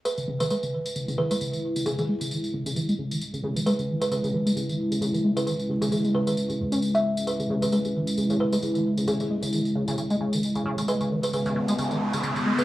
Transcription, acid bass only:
X:1
M:4/4
L:1/16
Q:"Swing 16ths" 1/4=133
K:C#m
V:1 name="Acid bass" clef=bass
z C, C, E, G, C, E, z C, C, E, G, C, E, z C, | C, E, G, C, E, z C, C, E, G, C, E, z C, C, E, | G, C, E, z C, C, E, G, C, E, z C, C, E, G, C, | E, z C, C, E, G, C, E, z C, C,, C E B, C z |
z C, C, C, G, C, E, z C, C, C, G, C, E, z C, | C, C, G, C, E, z C, C, C, G, C, E, z C, C, C, | G, C, E, z C, C, C, G, C, E, z C, C, C, G, C, |]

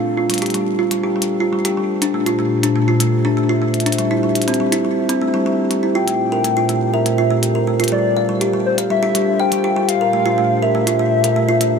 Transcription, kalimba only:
X:1
M:4/4
L:1/16
Q:1/4=122
K:Bblyd
V:1 name="Kalimba"
z F G, G G, z F G, G G, z F G, G G, z | D A, F A, z D A, F A, z D A, F A, z D | G, E G, z C G, E G, z C A, G, G, z G, E | F A, z B A, F A, z B A, F A, z B A, F |
G, z f G, G G, z f G, G G, z f G, G G, | z B A, F A, z B A, F A, z B A, F A, z |]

